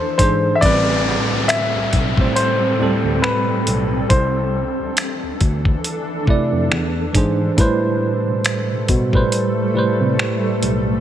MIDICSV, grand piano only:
0, 0, Header, 1, 2, 480
1, 0, Start_track
1, 0, Key_signature, 0, "minor"
1, 0, Tempo, 869565
1, 344, Time_signature, 4, 2, 24, 8
1, 6074, End_track
2, 0, Start_track
2, 0, Title_t, "Grand piano"
2, 0, Program_c, 0, 0
2, 0, Note_on_c, 0, 72, 90
2, 90, Note_off_c, 0, 72, 0
2, 98, Note_on_c, 0, 72, 88
2, 294, Note_off_c, 0, 72, 0
2, 306, Note_on_c, 0, 76, 84
2, 337, Note_on_c, 0, 74, 105
2, 341, Note_off_c, 0, 76, 0
2, 799, Note_off_c, 0, 74, 0
2, 818, Note_on_c, 0, 76, 100
2, 1299, Note_on_c, 0, 72, 87
2, 1316, Note_off_c, 0, 76, 0
2, 1779, Note_on_c, 0, 71, 81
2, 1796, Note_off_c, 0, 72, 0
2, 2239, Note_off_c, 0, 71, 0
2, 2260, Note_on_c, 0, 72, 85
2, 3200, Note_off_c, 0, 72, 0
2, 6074, End_track
0, 0, End_of_file